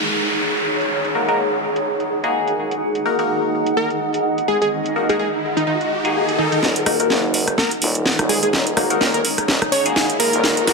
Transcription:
0.00 1.12 A#3 medium
0.00 1.13 D#4 medium
0.00 6.61 D#4 medium
0.00 1.12 F#4 medium
0.00 6.63 G#4 medium
0.00 1.13 A#4 loud
0.00 2.77 C#5 medium
0.00 10.73 F#5 medium
0.00 downlifter medium
0.09 closed hi-hat soft
0.33 closed hi-hat medium
0.57 closed hi-hat medium
0.81 closed hi-hat medium
1.05 closed hi-hat soft
1.15 1.27 A#3 medium
1.15 1.27 D#4 medium
1.15 1.27 F#4 medium
1.15 1.27 A#4 medium
1.28 1.41 A#3 medium
1.28 1.41 D#4 medium
1.28 1.41 F#4 medium
1.28 1.41 A#4 loud
1.28 closed hi-hat medium
1.76 closed hi-hat medium
2.00 closed hi-hat soft
2.24 3.03 A#3 medium
2.24 3.03 D#4 medium
2.24 3.03 F#4 medium
2.24 3.03 G#4 medium
2.24 closed hi-hat medium
2.48 closed hi-hat soft
2.62 6.63 D#5 medium
2.71 closed hi-hat medium
2.82 riser medium
2.95 closed hi-hat soft
3.05 3.16 A#3 medium
3.05 3.16 D#4 medium
3.05 3.16 F#4 medium
3.05 3.16 A#4 loud
3.19 4.93 A#3 medium
3.19 4.94 D#4 medium
3.19 4.94 F#4 medium
3.19 4.93 A#4 medium
3.19 closed hi-hat medium
3.66 closed hi-hat medium
3.77 3.89 A#4 medium
3.90 closed hi-hat soft
4.14 closed hi-hat medium
4.38 closed hi-hat soft
4.48 4.57 G#4 medium
4.62 4.68 G#4 medium
4.62 closed hi-hat medium
4.86 closed hi-hat soft
4.96 5.07 A#3 medium
4.96 5.07 D#4 medium
4.96 5.07 F#4 medium
4.96 5.07 A#4 medium
5.09 5.22 A#3 medium
5.09 5.22 D#4 medium
5.09 5.22 F#4 medium
5.09 5.16 G#4 medium
5.09 5.22 A#4 loud
5.09 closed hi-hat medium
5.19 5.28 G#4 medium
5.57 5.64 D#4 medium
5.57 closed hi-hat medium
5.67 5.76 D#4 medium
5.81 closed hi-hat soft
6.05 6.61 A#3 medium
6.05 6.61 D#4 medium
6.05 6.61 F#4 medium
6.05 6.61 G#4 loud
6.05 closed hi-hat medium
6.29 closed hi-hat soft
6.38 6.47 D#4 medium
6.52 6.59 D#4 medium
6.52 closed hi-hat medium
6.63 7.09 D#1 medium
6.63 10.73 D#4 loud
6.63 snare soft
6.63 riser medium
6.76 closed hi-hat medium
6.86 6.97 A#3 medium
6.86 6.97 D#4 medium
6.86 6.97 F#4 medium
6.86 6.97 A#4 loud
6.86 cross-stick medium
6.86 open hi-hat loud
7.00 8.74 A#3 medium
7.00 8.74 D#4 medium
7.00 8.74 F#4 medium
7.00 10.73 G#4 medium
7.00 8.74 A#4 loud
7.00 closed hi-hat medium
7.10 7.56 F#1 loud
7.10 snare soft
7.30 10.49 C#5 medium
7.34 open hi-hat loud
7.48 cross-stick medium
7.48 closed hi-hat medium
7.58 7.70 A#4 medium
7.58 snare medium
7.71 closed hi-hat soft
7.82 8.17 D#1 loud
7.82 open hi-hat loud
7.95 closed hi-hat medium
8.06 snare medium
8.19 8.51 D#1 loud
8.19 cross-stick medium
8.19 closed hi-hat medium
8.29 8.38 G#4 medium
8.29 open hi-hat loud
8.43 8.49 G#4 medium
8.43 closed hi-hat medium
8.53 8.99 D#1 medium
8.53 snare medium
8.67 closed hi-hat soft
8.77 8.88 A#3 medium
8.77 8.88 D#4 medium
8.77 8.88 F#4 medium
8.77 8.88 A#4 medium
8.77 cross-stick medium
8.77 open hi-hat loud
8.90 9.03 A#3 medium
8.90 9.03 D#4 medium
8.90 9.03 F#4 medium
8.90 9.03 A#4 loud
8.90 closed hi-hat medium
9.01 9.23 D#1 medium
9.01 9.09 A#4 medium
9.01 snare medium
9.14 9.21 A#4 medium
9.14 closed hi-hat soft
9.25 open hi-hat loud
9.38 cross-stick medium
9.38 closed hi-hat medium
9.48 9.60 D#1 loud
9.48 snare medium
9.62 cross-stick medium
9.62 closed hi-hat soft
9.72 9.84 C#5 medium
9.72 open hi-hat loud
9.86 10.44 A#3 medium
9.86 10.44 D#4 medium
9.86 10.44 F#4 medium
9.86 10.44 G#4 loud
9.86 closed hi-hat medium
9.96 snare medium
10.10 closed hi-hat medium
10.20 10.73 A#4 loud
10.20 open hi-hat loud
10.33 10.42 D#1 medium
10.33 10.73 D#5 medium
10.33 closed hi-hat medium
10.44 10.73 D#1 loud
10.44 snare medium
10.57 closed hi-hat medium
10.67 10.73 A#3 medium
10.67 10.73 D#4 medium
10.67 10.73 F#4 medium
10.67 10.73 A#4 medium
10.67 snare medium
10.67 open hi-hat loud

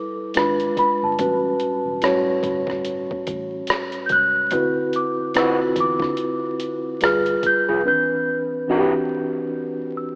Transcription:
0.00 0.16 G3 medium
0.00 0.16 E4 medium
0.00 0.16 A4 medium
0.00 0.17 B4 medium
0.00 0.39 D6 medium
0.34 0.70 G#1 medium
0.34 1.09 G#3 medium
0.34 1.09 D4 medium
0.34 1.10 F4 medium
0.34 1.10 B4 medium
0.34 0.78 B5 medium
0.34 cross-stick loud
0.34 closed hi-hat medium
0.60 closed hi-hat soft
0.77 1.03 B5 medium
0.77 kick medium
0.77 closed hi-hat medium
1.03 1.16 G1 medium
1.03 3.48 A5 medium
1.19 1.53 A1 medium
1.19 1.93 A2 medium
1.19 1.93 G3 medium
1.19 1.93 C#4 medium
1.19 1.94 F#4 medium
1.19 1.94 B4 medium
1.19 kick medium
1.19 closed hi-hat medium
1.60 closed hi-hat medium
1.86 1.99 E1 medium
2.02 3.49 A2 medium
2.02 3.50 G3 medium
2.02 3.50 C#4 medium
2.02 3.50 F#4 medium
2.02 3.50 C#5 medium
2.02 cross-stick medium
2.02 closed hi-hat medium
2.27 muted fingered electric bass stroke soft
2.43 3.11 G1 medium
2.43 kick medium
2.43 closed hi-hat medium
2.67 kick medium
2.67 cross-stick soft
2.85 closed hi-hat medium
3.11 kick medium
3.27 3.61 A1 medium
3.27 kick medium
3.27 closed hi-hat medium
3.67 cross-stick loud
3.67 closed hi-hat medium
3.92 closed hi-hat soft
4.06 4.11 G6 medium
4.06 kick medium
4.06 closed hi-hat medium
4.11 4.53 C#2 medium
4.11 4.97 F#6 medium
4.51 5.05 D2 medium
4.51 5.26 D3 medium
4.51 5.26 C4 medium
4.51 5.26 E4 medium
4.51 5.26 F#4 medium
4.51 5.27 B4 medium
4.51 kick medium
4.51 closed hi-hat medium
4.93 5.38 D6 medium
4.93 closed hi-hat soft
5.19 muted fingered electric bass stroke soft
5.34 6.82 D3 medium
5.34 6.82 C4 medium
5.34 5.58 C4 medium
5.34 6.83 E4 medium
5.34 5.43 F4 soft
5.34 5.58 F#4 medium
5.34 6.83 B4 medium
5.34 5.59 B4 medium
5.34 cross-stick medium
5.34 closed hi-hat medium
5.38 5.79 E6 medium
5.43 6.86 F#4 medium
5.76 5.96 E2 medium
5.76 kick medium
5.76 closed hi-hat medium
5.80 7.07 D6 medium
6.00 6.15 D3 loud
6.00 kick medium
6.00 cross-stick soft
6.17 closed hi-hat medium
6.60 closed hi-hat medium
7.01 7.36 G1 medium
7.01 7.76 G3 medium
7.01 7.76 F4 medium
7.01 7.76 G#4 medium
7.01 7.76 B4 medium
7.01 cross-stick loud
7.01 closed hi-hat medium
7.05 7.46 F6 medium
7.26 closed hi-hat soft
7.43 7.87 G6 loud
7.43 kick medium
7.43 closed hi-hat medium
7.69 7.83 F1 medium
7.69 7.82 F4 soft
7.69 7.81 G#4 soft
7.69 7.81 B4 medium
7.85 7.92 D#3 soft
7.85 8.59 C4 medium
7.85 8.59 D4 medium
7.85 8.60 B4 medium
7.85 10.15 G6 medium
7.91 8.62 E3 medium
8.68 10.15 E3 medium
8.68 10.15 C4 medium
8.68 10.15 D4 medium
8.68 8.92 E4 medium
8.68 8.76 F#4 medium
8.68 8.93 G4 medium
8.68 8.93 B4 medium
8.77 10.15 G4 medium
9.97 10.15 E6 medium

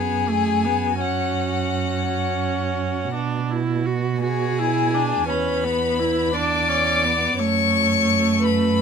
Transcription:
0.00 3.10 F#2 soft
0.00 0.31 B3 soft
0.00 0.97 G#4 soft
0.00 1.02 G#5 medium
0.29 0.66 A3 soft
0.65 1.01 B3 soft
0.98 2.06 C#4 soft
0.98 3.09 F#4 soft
0.98 3.15 F#5 medium
2.09 3.13 C#4 soft
3.14 5.26 B2 soft
3.14 3.53 D4 soft
3.51 3.88 E4 soft
3.86 4.22 F#4 soft
4.22 4.60 F#4 soft
4.22 5.25 G#4 soft
4.22 5.31 G#5 medium
4.59 4.96 E4 soft
4.94 5.29 D4 soft
5.29 7.36 E2 soft
5.29 5.66 C#4 soft
5.29 6.35 B4 medium
5.29 6.36 B5 medium
5.64 6.02 B3 soft
6.00 6.34 E4 medium
6.34 6.71 D4 soft
6.34 7.38 D5 medium
6.34 7.41 D6 medium
6.69 7.06 C#4 soft
7.04 7.41 B3 soft
7.38 8.82 F#2 medium
7.38 8.82 A3 soft
7.38 8.42 C#5 medium
7.38 8.45 C#6 medium
8.45 8.82 B4 medium
8.45 8.82 B5 medium

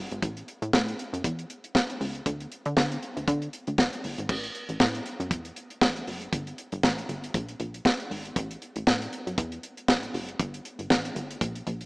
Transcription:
0.11 0.21 G#1 loud
0.11 closed hi-hat soft
0.22 0.43 A1 loud
0.22 kick loud
0.22 closed hi-hat loud
0.37 closed hi-hat soft
0.48 closed hi-hat medium
0.62 0.71 A2 medium
0.62 closed hi-hat medium
0.73 0.94 A2 loud
0.73 kick loud
0.73 snare loud
0.88 closed hi-hat medium
0.99 closed hi-hat medium
1.13 1.22 F#2 medium
1.13 closed hi-hat medium
1.24 1.45 E2 loud
1.24 kick loud
1.24 closed hi-hat loud
1.39 closed hi-hat soft
1.50 closed hi-hat medium
1.64 closed hi-hat soft
1.75 kick loud
1.75 snare loud
1.90 closed hi-hat soft
2.01 2.22 C#2 medium
2.01 open hi-hat medium
2.15 closed hi-hat soft
2.26 2.47 D2 loud
2.26 kick loud
2.26 closed hi-hat loud
2.40 closed hi-hat soft
2.52 closed hi-hat medium
2.66 2.75 D3 loud
2.66 closed hi-hat medium
2.77 2.98 D3 loud
2.77 kick loud
2.77 snare loud
2.92 closed hi-hat medium
3.03 closed hi-hat medium
3.17 3.26 D2 medium
3.17 closed hi-hat medium
3.28 3.49 D3 loud
3.28 kick loud
3.28 closed hi-hat loud
3.42 closed hi-hat soft
3.53 closed hi-hat medium
3.67 3.77 D2 medium
3.67 closed hi-hat medium
3.78 3.90 A1 medium
3.78 kick loud
3.78 snare loud
3.93 closed hi-hat medium
4.04 4.16 G1 medium
4.04 open hi-hat medium
4.18 4.27 G#1 loud
4.18 closed hi-hat soft
4.29 4.50 A1 loud
4.29 kick loud
4.29 crash loud
4.44 closed hi-hat medium
4.55 closed hi-hat medium
4.69 4.78 A1 medium
4.69 closed hi-hat medium
4.80 5.01 A2 loud
4.80 kick loud
4.80 snare loud
4.95 closed hi-hat medium
5.06 closed hi-hat medium
5.20 5.32 F#2 medium
5.20 closed hi-hat medium
5.31 5.52 E2 loud
5.31 kick loud
5.31 closed hi-hat loud
5.45 closed hi-hat soft
5.56 closed hi-hat medium
5.70 closed hi-hat medium
5.81 6.03 A1 medium
5.81 kick loud
5.81 snare loud
5.96 closed hi-hat soft
6.07 6.28 F#1 medium
6.07 open hi-hat medium
6.22 closed hi-hat soft
6.33 6.54 G1 loud
6.33 kick loud
6.33 closed hi-hat loud
6.47 closed hi-hat soft
6.58 closed hi-hat medium
6.72 6.82 G1 medium
6.72 closed hi-hat medium
6.83 7.05 A1 loud
6.83 kick loud
6.83 snare loud
6.98 closed hi-hat medium
7.09 7.30 G1 medium
7.09 closed hi-hat medium
7.24 closed hi-hat medium
7.34 7.55 A#1 loud
7.34 kick loud
7.34 closed hi-hat loud
7.49 closed hi-hat medium
7.60 7.81 A#1 medium
7.60 closed hi-hat medium
7.74 closed hi-hat medium
7.85 kick loud
7.85 snare loud
8.00 closed hi-hat medium
8.10 8.32 G#1 medium
8.10 open hi-hat medium
8.25 closed hi-hat soft
8.36 8.57 A1 loud
8.36 kick loud
8.36 closed hi-hat loud
8.51 closed hi-hat medium
8.62 closed hi-hat medium
8.76 8.85 A1 loud
8.76 closed hi-hat medium
8.87 9.08 A2 loud
8.87 kick loud
8.87 snare loud
9.02 closed hi-hat medium
9.13 closed hi-hat medium
9.27 9.36 F#2 medium
9.27 closed hi-hat medium
9.38 9.59 E2 loud
9.38 kick loud
9.38 closed hi-hat loud
9.52 closed hi-hat medium
9.63 closed hi-hat medium
9.77 closed hi-hat medium
9.88 10.10 A1 medium
9.88 kick loud
9.88 snare loud
10.03 closed hi-hat soft
10.14 10.35 F#1 medium
10.14 open hi-hat medium
10.28 closed hi-hat soft
10.39 10.61 G1 loud
10.39 kick loud
10.39 closed hi-hat loud
10.54 closed hi-hat soft
10.65 closed hi-hat medium
10.79 10.88 G1 loud
10.79 closed hi-hat medium
10.90 11.11 A1 medium
10.90 kick loud
10.90 snare loud
11.05 closed hi-hat medium
11.15 11.37 G1 medium
11.15 closed hi-hat medium
11.31 closed hi-hat medium
11.41 11.62 A#1 loud
11.41 kick loud
11.41 closed hi-hat loud
11.55 closed hi-hat medium
11.67 11.86 A#1 loud
11.67 closed hi-hat medium
11.81 closed hi-hat medium

